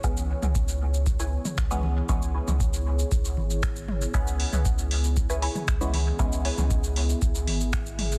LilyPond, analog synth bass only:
\new Staff \with { instrumentName = "Analog synth bass" } { \clef bass \time 4/4 \key cis \minor \tempo 4 = 117 cis,8 r16 cis,4.~ cis,16 r8 cis,8. r16 | cis,8 r16 cis,4 r16 cis,8 gis,,4~ gis,,16 r16 | cis,8 r16 cis,4.~ cis,16 r8 cis,8. r16 | cis,8 r16 cis,4 r16 cis,8 gis,,4~ gis,,16 r16 | }